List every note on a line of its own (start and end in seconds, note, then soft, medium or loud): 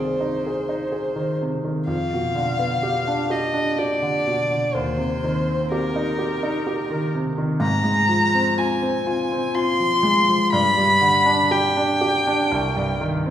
0.00 1.85 C2 soft
0.00 1.41 C3 soft
0.00 1.16 D#3 soft
0.00 0.10 C4 soft
0.00 0.35 G#4 soft
0.00 1.38 C5 soft
0.20 0.59 D#4 soft
0.46 0.84 G#4 soft
0.69 1.07 D#4 soft
0.92 1.31 G#4 soft
1.16 1.55 D#3 soft
1.41 1.80 C3 soft
1.64 1.89 D#3 soft
1.87 4.71 F2 soft
1.87 3.33 F5 medium
2.13 2.51 B2 soft
2.35 2.74 D3 soft
2.59 2.97 B3 soft
2.83 3.22 G4 soft
3.07 3.46 D4 soft
3.30 3.69 G4 soft
3.30 3.80 D#5 medium
3.54 3.93 D4 soft
3.79 4.17 G4 soft
3.79 4.76 D5 medium
4.02 4.41 D3 soft
4.27 4.66 B2 soft
4.50 4.75 D3 soft
4.74 7.58 D#2 soft
4.74 5.72 C5 medium
4.98 5.39 C3 soft
5.24 5.64 D#3 soft
5.48 5.87 C4 soft
5.72 6.11 G4 soft
5.72 7.12 A#4 medium
5.96 6.35 D#4 soft
6.19 6.58 G4 soft
6.43 6.82 D#4 soft
6.67 7.05 G4 soft
6.90 7.29 D#3 soft
7.15 7.53 C3 soft
7.38 7.62 D#3 soft
7.60 10.50 G#2 soft
7.60 8.59 A#5 medium
7.84 8.24 G#3 soft
8.08 8.49 F3 soft
8.34 8.74 C4 soft
8.58 8.98 F4 soft
8.58 9.56 G#5 medium
8.82 9.22 C4 soft
9.06 9.46 F4 soft
9.32 9.71 C4 soft
9.55 9.95 F4 soft
9.55 10.51 C6 medium
9.80 10.20 F3 soft
10.03 10.44 G#3 soft
10.28 10.54 F3 soft
10.52 12.47 G2 medium
10.52 11.53 B5 medium
10.77 11.17 G3 soft
11.01 11.41 D3 soft
11.26 11.66 D4 soft
11.51 11.91 G4 soft
11.51 13.01 G5 medium
11.77 12.17 D4 soft
12.01 12.41 G4 soft
12.27 12.52 D4 soft
12.52 13.30 C2 medium
12.77 13.16 G2 soft
13.01 13.30 D#3 soft
13.26 13.30 C4 soft